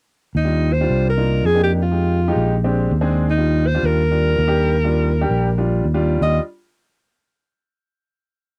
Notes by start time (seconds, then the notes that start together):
0.35 D#2 D#4
0.45 G3 D4 F4
0.73 C5
0.81 G3 D4 F4
0.89 C2
1.09 A#4
1.17 A#3 D4 D#4 F4
1.44 F2 G#4
1.54 A#3 D4 D#4 G4
1.63 G4
1.82 F4
1.91 G#3 D#4 G4
2.28 G#3 D#4 G4
2.36 A#1
2.64 G#3 C4 D4 G4
2.91 D#2
3.01 G#3 C4 D4 G#4
3.30 D#4
3.38 G3 D4 F4
3.67 C5
3.75 G3 D4 F4
3.83 D#2 A#4
4.11 G3 D4 F4
4.38 D#2
4.48 G3 D4 G4
4.84 G3 D4 F4
5.21 G3 D4 G4
5.30 A#1
5.58 G3 D4 F4
5.84 D#2
5.94 G3 D4 F4
6.21 D#2 G3 D4 F4 D#5